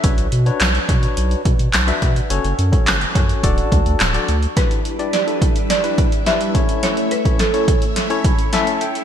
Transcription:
<<
  \new Staff \with { instrumentName = "Marimba" } { \time 4/4 \key e \dorian \tempo 4 = 106 r1 | r1 | b'4 d''4 d''4 e''4 | cis''8 b'8 a'2~ a'8 r8 | }
  \new Staff \with { instrumentName = "Tine electric piano" } { \time 4/4 \key e \dorian << { r1 | r1 | r1 | r2 r8 b''8 a''8 g''8 | } \\ { <d' fis' b' cis''>8 r16 <d' fis' b' cis''>8 r16 <d' fis' b' cis''>4 r8. <d' fis' b' e''>8 r16 | <cis' fis' a' cis''>8 r16 <cis' fis' a' cis''>8 r16 <cis' fis' a' cis''>8 <d' fis' a' d''>4 r16 <d' fis' a' d''>8 r16 | <d' e' g' b'>8 r16 <d' e' g' d''>16 r16 <d' e' g' a'>8 r8 <d' e' g' b'>8 r16 <d' e' g' b'>8 <cis' e' a' cis''>8~ | <cis' e' a' cis''>8 r16 <cis' e' a' cis''>16 r16 <cis' e' a' cis''>8 r8 <cis' e' a' cis''>8 r16 <cis' e' a' e''>8 r8 | } >> }
  \new Staff \with { instrumentName = "String machine" } { \time 4/4 \key e \dorian << { r1 | r1 | <e' e''>1~ | <e' e''>1 | } \\ { r1 | r1 | <g d' b'>2.~ <g d' b'>8 <a cis''>8~ | <a cis''>1 | } >> }
  \new Staff \with { instrumentName = "Sub bass" } { \clef bass \time 4/4 \key e \dorian b,,16 b,,16 b,8 b,,8 b,8 b,,8 b,16 b,16 b,,8 b,8 | fis,,16 fis,,16 fis,8 fis,,8 fis,8 d,,8 d,16 d,16 d,,8 d,8 | r1 | r1 | }
  \new DrumStaff \with { instrumentName = "Drums" } \drummode { \time 4/4 <hh bd>16 hh16 hh16 hh16 <hc hh sn>16 hh16 <hh bd>16 hh16 hh16 hh16 <hh bd>16 hh16 <hc hh sn>16 hh16 <hh bd>16 hh16 | hh16 hh16 hh16 <hh bd>16 <hc hh sn>16 hh16 <hh bd>16 hh16 <hh bd>16 hh16 <hh bd>16 hh16 <hc hh sn>16 hh16 hh16 hh16 | <hh bd sn>16 hh16 hh16 hh16 <hh sn>16 hh16 <hh bd>16 hh16 <hh sn>16 hh16 <hh bd>16 hh16 <hh sn>16 hh16 <hh bd>16 hh16 | <hh sn>16 hh16 hh16 <hh bd>16 <hh sn>16 hh16 <hh bd>16 hh16 <hh sn>16 hh16 <hh bd>16 hh16 <hh sn>16 hh16 hh16 hh16 | }
>>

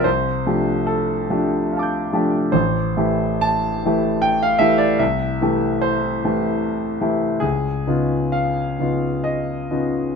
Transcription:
<<
  \new Staff \with { instrumentName = "Grand piano" } { \time 3/4 \key c \major \tempo 4 = 73 << { r2 <f'' a'' d''' g'''>4 | r2. | r2. | r2. | } \\ { c''4 a'4. r8 | c''4 a''4 g''16 f''16 e''16 d''16 | e''4 c''4. r8 | aes'4 f''4 ees''4 | } >> }
  \new Staff \with { instrumentName = "Grand piano" } { \time 3/4 \key c \major c,8 <f a d' g'>4 <f a d' g'>4 <f a d' g'>8 | a,,8 <e a e' g'>4 <e a e' g'>4 <e a e' g'>8 | c,8 <e a e' g'>4 <e a e' g'>4 <e a e' g'>8 | des,8 <des ces' ees' f'>4 <des ces' ees' f'>4 <des ces' ees' f'>8 | }
>>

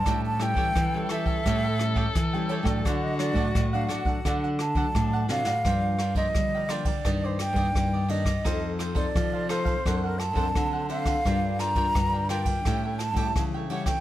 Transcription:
<<
  \new Staff \with { instrumentName = "Flute" } { \time 4/4 \key g \minor \tempo 4 = 86 a''16 a''16 g''4 e''4. r8 cis''16 d''16~ | d''16 ees''16 d''8. f''16 fis''4 a''4 f''8~ | f''8. ees''8. d''8. c''16 g''4 ees''8~ | ees''16 r8 d''8. c''8. bes'16 a''4 f''8~ |
f''8 bes''4 g''4 a''8 r8 fis''16 g''16 | }
  \new Staff \with { instrumentName = "Cavaquinho" } { \time 4/4 \key g \minor <g' a' cis'' g''>8 <g' a' cis'' g''>16 <g' a' cis'' g''>16 r16 <a' cis'' g''>16 <g' a' cis'' g''>16 <a' cis'' g''>16 <g' a' cis'' g''>16 <a' cis'' g''>8 <g' a' cis'' g''>16 r16 <a' cis'' g''>16 <g' a' cis'' g''>16 <a' cis'' g''>16 | <d' a' d'' fis''>8 <d' a' d'' fis''>16 <d' a' d'' fis''>16 r16 <a' d'' fis''>16 <d' a' d'' fis''>16 <a' d'' fis''>16 <d' a' d'' fis''>16 <a' d'' fis''>8 <d' a' d'' fis''>16 r16 <a' d'' fis''>16 <d' a' d'' fis''>16 <a' d'' fis''>16 | <f' bes' d'' g''>8 <f' bes' d'' g''>16 <f' bes' d'' g''>16 r16 <bes' d'' g''>16 <f' bes' d'' g''>16 <bes' d'' g''>16 <d' g' d'' ees''>16 <g' d'' ees''>8 <d' g' d'' ees''>16 r16 <g' d'' ees''>16 <d' g' d'' ees''>16 <g' d'' ees''>16 | <ees' a' c'' f''>8 <ees' a' c'' f''>16 <ees' a' c'' f''>16 r16 <a' c'' f''>16 <ees' a' c'' f''>16 <a' c'' f''>16 <d' a' c'' fis''>16 <a' c'' fis''>8 <d' a' c'' fis''>16 r16 <a' c'' fis''>16 <d' a' c'' fis''>16 <a' c'' fis''>16 |
<f' bes' d'' g''>8 <f' bes' d'' g''>16 <f' bes' d'' g''>16 r16 <bes' d'' g''>16 <f' bes' d'' g''>16 <bes' d'' g''>16 <g' a' cis'' g''>16 <a' cis'' g''>8 <g' a' cis'' g''>16 r16 <a' cis'' g''>16 <g' a' cis'' g''>16 <a' cis'' g''>16 | }
  \new Staff \with { instrumentName = "Tenor saxophone" } { \time 4/4 \key g \minor a'1 | fis'2~ fis'8 r8 d'8 fis'8 | r1 | r1 |
r1 | }
  \new Staff \with { instrumentName = "Nylon-string guitar" } { \time 4/4 \key g \minor << { <g cis' e'>8 <g cis' e'>8. <g cis' e'>8. <g cis' e'>16 r16 <g cis' e'>8 r16 <g cis' e'>8 <fis a d'>16~ | <fis a d'>8 <fis a d'>8. <fis a d'>8 <fis a d'>16 <fis a d'>8 r16 <fis a d'>8. <fis a d'>16 r16 | <f bes d'>8 r16 <f bes>8. <f bes d'>16 r16 <ees bes d'>8 r16 <ees bes d'>8. <ees bes d'>16 r16 | <c' ees' a'>8. <c' ees' a'>8. <c' ees' a'>8 <c' d' a'>8 r16 <c' d' a'>8. <c' d' a'>8 |
<d' f' bes'>8. <d' f' bes'>8. <d' f' bes'>8 <g cis' e'>8 r16 <g cis' e'>8. <g cis' e'>16 r16 | } \\ { a,4 e4 a,4 e4 | d4 a,4 d4 a,4 | g,4 d4 g,4 g,4 | f4 c4 fis4 fis4 |
g4 d4 a,4 e4 | } >> }
  \new Staff \with { instrumentName = "Nylon-string guitar" } { \clef bass \time 4/4 \key g \minor a,8. e16 e8 r8 a,4 e8. a,16 | d8. a,16 a,8 r8 d4 a,8 c16 a,16 | g,4 g4 g,8. g,16 g,4 | f,4 f4 fis,8. fis,16 d4 |
g,4 g,4 a,8. a,16 cis4 | }
  \new DrumStaff \with { instrumentName = "Drums" } \drummode { \time 4/4 <hh bd ss>16 hh16 <hh ss>16 bd16 <hh bd ss>8 <hh ss>16 <hh bd>16 <hh bd ss>16 hh16 <hh ss>16 bd16 <hh bd ss>16 hh16 hh16 <bd ss>16 | <hh bd ss>8 <hh ss>16 <hh bd>16 <hh bd ss>16 hh16 <hh ss>16 <hh bd>16 <hh bd ss>16 hh16 <hh ss>16 bd16 <hh bd ss>16 hh16 sn16 sn16 | <bd cymr ss>8 <cymr ss>16 <bd cymr>16 <bd cymr ss>8 <cymr ss>16 <bd cymr>16 <bd cymr ss>8 <cymr ss>16 <bd cymr>16 <bd cymr ss>8 cymr16 <bd cymr ss>16 | <bd cymr ss>8 <cymr ss>16 <bd cymr>16 <bd cymr ss>8 <cymr ss>16 <bd cymr>16 <bd cymr ss>8 <cymr ss>16 <bd cymr>16 <bd cymr ss>8 cymr16 <bd cymr ss>16 |
<bd cymr ss>8 <cymr ss>16 <bd cymr>16 <bd cymr ss>8 <cymr ss>16 <bd cymr>16 <bd cymr ss>8 <cymr ss>16 <bd cymr>16 <bd cymr ss>8 cymr16 <bd cymr ss>16 | }
>>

